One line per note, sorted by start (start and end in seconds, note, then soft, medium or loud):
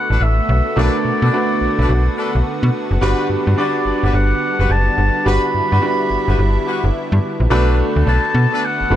0.00 7.46 D3 medium
0.00 0.76 A3 medium
0.00 2.97 A3 medium
0.00 7.46 B3 medium
0.00 0.77 D4 medium
0.00 0.77 F#4 medium
0.00 5.22 F#4 medium
0.00 0.84 B4 loud
0.00 0.24 F#5 loud
0.10 0.18 A1 medium
0.10 0.21 D4 medium
0.10 0.22 A4 medium
0.10 0.22 B4 medium
0.21 0.40 A1 medium
0.21 0.79 E5 loud
0.49 0.61 B1 loud
0.76 0.89 B1 loud
0.76 1.30 A3 medium
0.76 1.31 D4 medium
0.76 0.95 D4 loud
0.76 1.31 F#4 medium
0.76 0.95 A4 medium
0.76 0.85 A#4 medium
0.76 0.95 B4 loud
0.76 2.46 D5 loud
0.84 1.32 B4 medium
1.05 1.12 B2 soft
1.22 1.30 B2 loud
1.22 1.33 D4 medium
1.22 1.33 A4 medium
1.22 1.34 B4 medium
1.33 2.41 A3 medium
1.33 2.41 D4 medium
1.33 2.41 F#4 medium
1.33 2.41 B4 medium
1.61 1.68 B1 soft
1.78 1.86 B1 loud
1.78 1.89 D4 medium
1.78 1.89 A4 medium
1.78 1.90 B4 medium
1.89 2.09 B1 loud
2.17 2.35 D4 medium
2.17 2.35 A4 medium
2.17 2.35 B4 medium
2.35 2.42 B1 loud
2.63 2.70 B2 loud
2.91 2.98 F#1 medium
3.01 3.14 G1 loud
3.01 7.46 G3 medium
3.01 3.55 G3 loud
3.01 3.55 D4 medium
3.01 3.28 F#4 loud
3.01 3.55 F#4 medium
3.01 3.28 G4 loud
3.01 3.28 B4 loud
3.01 3.56 B4 loud
3.29 3.37 G2 medium
3.47 3.54 G2 medium
3.57 4.65 G3 medium
3.57 4.65 D4 medium
3.57 3.75 F#4 medium
3.57 4.65 F#4 medium
3.57 3.75 G4 medium
3.57 3.76 B4 medium
3.57 4.65 D5 medium
3.57 4.10 D5 medium
3.85 3.92 G1 soft
4.03 4.11 G1 loud
4.03 4.14 F#4 medium
4.03 4.14 G4 medium
4.03 4.14 B4 medium
4.14 4.33 G1 loud
4.14 4.73 F#5 loud
4.59 4.67 F#1 loud
4.59 4.70 F#4 medium
4.59 4.70 G4 medium
4.59 4.70 B4 medium
4.70 4.89 F#1 medium
4.70 5.26 A5 loud
4.98 5.10 G1 medium
5.25 5.38 G1 loud
5.25 5.79 G3 medium
5.25 5.79 D4 medium
5.25 7.47 E4 medium
5.25 5.79 F#4 medium
5.25 5.44 F#4 loud
5.25 5.44 G4 medium
5.25 5.80 B4 medium
5.25 5.44 B4 loud
5.25 6.91 B5 loud
5.54 5.61 G2 soft
5.71 5.79 G2 medium
5.71 5.82 F#4 medium
5.71 5.82 G4 medium
5.71 5.82 B4 medium
5.81 6.89 G3 medium
5.81 6.89 D4 medium
5.81 6.89 F#4 medium
5.81 6.90 B4 medium
6.10 6.17 G1 medium
6.28 6.35 G1 loud
6.28 6.38 F#4 medium
6.28 6.38 G4 medium
6.28 6.39 B4 medium
6.39 6.58 G1 medium
6.66 6.84 F#4 medium
6.66 6.84 G4 medium
6.66 6.84 B4 medium
6.84 6.91 G1 medium
7.12 7.19 G2 loud
7.40 7.47 A#1 medium
7.50 7.83 B1 loud
7.50 8.96 D3 medium
7.50 8.58 A3 medium
7.50 8.96 A3 medium
7.50 8.96 B3 medium
7.50 7.76 D4 loud
7.50 8.58 D4 medium
7.50 8.58 F#4 medium
7.50 7.76 A4 medium
7.50 8.96 A4 medium
7.50 7.77 B4 loud
7.50 8.58 B4 loud
7.96 8.03 D2 medium
8.06 8.19 B1 loud
8.06 8.24 D4 medium
8.06 8.24 A4 medium
8.06 8.24 B4 medium
8.06 8.66 A5 loud
8.35 8.47 B2 loud
8.52 8.63 D4 medium
8.52 8.63 A4 medium
8.52 8.63 B4 medium
8.65 8.96 F#5 loud
8.81 8.85 F#1 soft
8.90 8.96 F#1 loud
8.90 8.96 A3 medium
8.90 8.96 D4 medium
8.90 8.96 F#4 medium
8.90 8.96 B4 medium